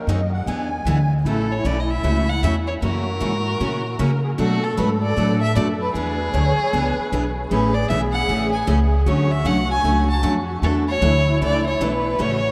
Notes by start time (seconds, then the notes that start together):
0.07 F#2 D#3 F#3 C4 D#4 G#4 D#5
0.33 F#5
0.46 E2 E3 B3 D4 G#4 G#5
0.85 D2 E3 B3 D4 G#4
1.25 A1 C#3 E3 A3 C#4 E4 F#4 A4
1.52 C#5
1.65 B1 C#3 E3 A3 C#4 F#4 D5
1.80 D#5
1.90 E5
2.03 C#2 C#3 E3 A3 C#4 F#4
2.29 F#5
2.43 E2 C#3 E3 A3 C#4 F#4 E5
2.67 C#5
2.82 F#2 C#3 E3 A#3 C#4 F#4 A#4
3.20 G#2 C#3 E3 A#3 C#4 F#4
3.60 A#2 C#3 E3 A#3 C#4 F#4
3.99 C#3 E3 A#3 C#4 F#4 A#4
4.24 G#4
4.38 B2 F#3 A3 D4 F#4 A4
4.63 A4
4.77 G#2 B2 F#3 A3 D4 F#4 B4
5.03 D5
5.17 A2 B2 F#3 A3 D4 F#4
5.42 E5
5.55 F#2 B2 F#3 A3 D4 F#4 D5
5.81 B4
5.94 E2 E3 B3 D4 G#4 B4
6.34 D2 E3 B3 D4 G#4 C#5
6.58 muted upright bass stroke
6.73 C#2 E3 B3 D4 G#4 B4
6.98 muted upright bass stroke
7.12 B1 E3 B3 D4 G#4
7.50 A1 C#3 E3 A3 C#4 G#4 B4
7.74 D5
7.89 B1 C#3 E3 A3 C#4 G#4 E5
8.13 F#5
8.28 A1 C#3 E3 A3 C#4 G#4
8.53 G#5
8.67 C#2 C#3 E3 A3 C#4 G#4
9.06 D2 D3 F#3 A3 C#4 F#4 C#5
9.31 E5
9.45 C2 D3 F#3 A3 C#4 F#4 F#5
9.70 G#5
9.84 C#2 D3 F#3 A3 C#4 F#4
10.10 A5
10.23 F2 D3 F#3 A3 C#4 F#4
10.62 E2 E3 A3 D4 E4 F#4 A4
10.88 C#5
11.01 D2 E3 A3 D4 E4 A4
11.41 C#2 E3 A3 D4 E4 A4 D5
11.68 C#5
11.80 B1 E3 A3 D4 E4 A4 B4
12.14 F4
12.18 A1 C#3 E3 A3 C#4 F#4 G#4 C#5